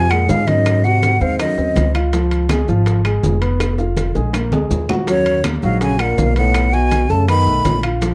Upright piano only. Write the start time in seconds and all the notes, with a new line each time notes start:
0.11 G#3 G#4
0.48 D#4 D#5
0.85 F#4 F#5
1.21 C4 C5
1.40 D#4 D#5
1.58 C4 C5
1.95 F4 F5
2.13 F3 F4
2.51 G#3 G#4
2.68 F3 F4
3.05 G#3 G#4
3.42 B3 B4
3.78 F4 F5
4.15 G#3 G#4
4.34 A#3 A#4
4.53 G#3 G#4
4.89 F#4 F#5
5.08 F#3 F#4
5.44 A#3 A#4
5.63 F#3 F#4
6.00 A#3 A#4
6.36 B3 B4
6.73 F#4 F#5
7.10 A3 A4
7.28 B3 B4
7.46 A3 A4
7.83 F4 F5
8.02 F3 F4